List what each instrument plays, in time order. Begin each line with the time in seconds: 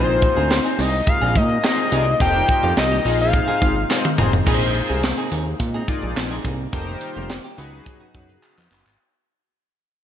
Already playing: analog synth bass A#1, analog synth pad C3 G#3 A#3 D#4, clean electric guitar C4, analog polysynth D#4 F4 G#4 C5, analog synth lead C5
0.09 muted clean electric guitar stroke
0.22 muted clean electric guitar stroke, kick, closed hi-hat
0.37 analog synth bass D2, clean electric guitar C4 D#4 G#4
0.50 muted clean electric guitar stroke, snare, clap, closed hi-hat
0.65 clean electric guitar C4 D#4 G#4
0.78 analog synth bass C2, clean electric guitar C4 D#4 G#4, analog synth lead D#5, open hi-hat
0.93 muted clean electric guitar stroke
1.07 analog synth lead F5, muted clean electric guitar stroke, kick, closed hi-hat
1.21 analog synth bass A#1, clean electric guitar C4 D#4 G#4
1.35 analog synth bass A#2, analog synth lead D#5, muted clean electric guitar stroke, kick, closed hi-hat
1.50 muted clean electric guitar stroke
1.63 analog polysynth D#4 F4 G#4 C5, muted clean electric guitar stroke, snare, clap, closed hi-hat
1.78 clean electric guitar C4 D#4 G#4
1.91 analog synth bass C2, clean electric guitar C4 D#4 G#4, analog polysynth D#4 F4 G#4 D5, closed hi-hat
2.07 muted clean electric guitar stroke
2.20 analog synth bass F1, analog synth pad D#3 G3 F4, clean electric guitar A#3 D#4 A4, analog polysynth D#4 G4 A#4 C5, analog synth lead G5, kick, closed hi-hat
2.35 muted clean electric guitar stroke
2.48 muted clean electric guitar stroke, kick, closed hi-hat
2.63 analog synth bass F2, clean electric guitar A#3 D#4 G4
2.77 analog synth bass C2, analog synth lead D#5, snare, clap, closed hi-hat
2.92 clean electric guitar A#3 D#4 G4
3.05 analog synth bass A#1, analog synth pad C3 G#3 D#4, clean electric guitar C4 D#4 G#4, analog polysynth D#4 F4 G#4 C5, open hi-hat
3.20 analog synth lead F5, muted clean electric guitar stroke
3.33 muted clean electric guitar stroke, kick, closed hi-hat
3.48 clean electric guitar C4 D#4 G#4
3.61 analog synth bass G#1, muted clean electric guitar stroke, kick, closed hi-hat
3.76 muted clean electric guitar stroke
3.90 analog polysynth D#4 F4 G#4 C5, muted clean electric guitar stroke, snare, clap
4.05 muted clean electric guitar stroke, high tom
4.18 analog synth bass F1, clean electric guitar C4 D#4 G#4, analog polysynth D#4 F4 G#4 C5, mid tom
4.33 muted clean electric guitar stroke, floor tom
4.46 analog synth bass A#1, analog synth pad C3 G#3 A#3 D#4, clean electric guitar C4 D#4 G#4, analog polysynth D#4 F4 G#4 B4, kick, crash
4.54 analog polysynth C5
4.61 muted clean electric guitar stroke
4.75 muted clean electric guitar stroke, closed hi-hat
4.89 analog synth bass C2, clean electric guitar C4 D#4 G#4
5.03 muted clean electric guitar stroke, snare, clap, closed hi-hat
5.18 clean electric guitar C4 D#4 G#4
5.31 analog synth bass D#2, clean electric guitar C4 D#4 G#4, closed hi-hat
5.46 muted clean electric guitar stroke
5.60 analog synth bass A#2, muted clean electric guitar stroke, kick, closed hi-hat
5.74 clean electric guitar C4 D#4 G#4
5.88 analog polysynth D#4 F4 G#4 D5, kick, closed hi-hat
6.03 analog synth bass A#1, muted clean electric guitar stroke
6.16 analog synth bass A#1, muted clean electric guitar stroke, snare, clap, closed hi-hat
6.31 clean electric guitar C4 D#4 G#4
6.44 analog synth bass C2, clean electric guitar C4 D#4 G#4, kick, closed hi-hat
6.59 muted clean electric guitar stroke
6.73 analog synth bass F1, analog synth pad D#3 G3 F4, clean electric guitar A#3 D#4 A4, analog polysynth D#4 G4 A#4 C5, kick, closed hi-hat
6.88 muted clean electric guitar stroke
7.01 muted clean electric guitar stroke, closed hi-hat
7.16 analog synth bass F1, clean electric guitar A#3 D#4 G4
7.30 snare, clap, closed hi-hat
7.44 clean electric guitar A#3 D#4 G4
7.58 analog synth bass C#2, analog synth pad C#3 F#3 B3 D#4, clean electric guitar B3 D#4 F#4, analog polysynth D#4 F#4 G#4 B4, closed hi-hat
7.73 muted clean electric guitar stroke
7.86 muted clean electric guitar stroke, kick, closed hi-hat
8.00 clean electric guitar B3 D#4 F#4
8.14 analog synth bass F#2, clean electric guitar B3 D#4 F#4, analog polysynth D#4 F#4 G#4 B4, kick, closed hi-hat
8.29 muted clean electric guitar stroke, closed hi-hat
8.42 muted clean electric guitar stroke, clap
8.57 analog synth bass F2, muted clean electric guitar stroke, clap
8.70 analog synth bass F#1, clean electric guitar B3 D#4 F#4, clap
8.86 analog synth bass G#1, muted clean electric guitar stroke, clap